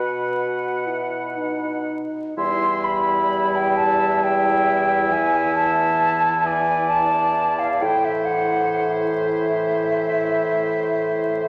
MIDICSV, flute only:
0, 0, Header, 1, 2, 480
1, 0, Start_track
1, 0, Key_signature, 1, "minor"
1, 0, Tempo, 1005025
1, 1132, Time_signature, 12, 3, 24, 8
1, 1132, Tempo, 927357
1, 2092, Tempo, 898204
1, 4492, Tempo, 870827
1, 6016, End_track
2, 0, Start_track
2, 0, Title_t, "Flute"
2, 0, Program_c, 0, 73
2, 0, Note_on_c, 0, 83, 63
2, 878, Note_off_c, 0, 83, 0
2, 1137, Note_on_c, 0, 84, 105
2, 1375, Note_on_c, 0, 83, 104
2, 1383, Note_off_c, 0, 84, 0
2, 1747, Note_on_c, 0, 79, 105
2, 1754, Note_off_c, 0, 83, 0
2, 1855, Note_on_c, 0, 81, 109
2, 1863, Note_off_c, 0, 79, 0
2, 2097, Note_on_c, 0, 79, 112
2, 2105, Note_off_c, 0, 81, 0
2, 2572, Note_on_c, 0, 80, 114
2, 2580, Note_off_c, 0, 79, 0
2, 2798, Note_off_c, 0, 80, 0
2, 2801, Note_on_c, 0, 81, 113
2, 3284, Note_on_c, 0, 80, 120
2, 3292, Note_off_c, 0, 81, 0
2, 3519, Note_on_c, 0, 81, 110
2, 3527, Note_off_c, 0, 80, 0
2, 3890, Note_on_c, 0, 77, 100
2, 3898, Note_off_c, 0, 81, 0
2, 4012, Note_on_c, 0, 79, 114
2, 4020, Note_off_c, 0, 77, 0
2, 4135, Note_on_c, 0, 76, 98
2, 4144, Note_off_c, 0, 79, 0
2, 4243, Note_on_c, 0, 78, 105
2, 4251, Note_off_c, 0, 76, 0
2, 4578, Note_off_c, 0, 78, 0
2, 4724, Note_on_c, 0, 76, 104
2, 6016, Note_off_c, 0, 76, 0
2, 6016, End_track
0, 0, End_of_file